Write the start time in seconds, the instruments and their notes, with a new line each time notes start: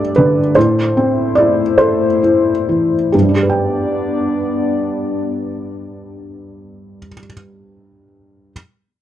Already playing: felt piano G2 D4 G4 A4 D5 E5, ambient pad A3 D4 D5
0.16 felt piano D3 B4
0.55 felt piano A2 C5, ambient pad E4 C5
0.97 felt piano C4
1.35 felt piano E4 D5
1.78 felt piano A4 C5
2.23 felt piano E4
2.69 felt piano E3
3.12 felt piano G2 G4, ambient pad B3 D4 D5
3.22 felt piano G3
3.29 felt piano D4
3.35 felt piano G4
3.43 felt piano B4
3.50 felt piano G5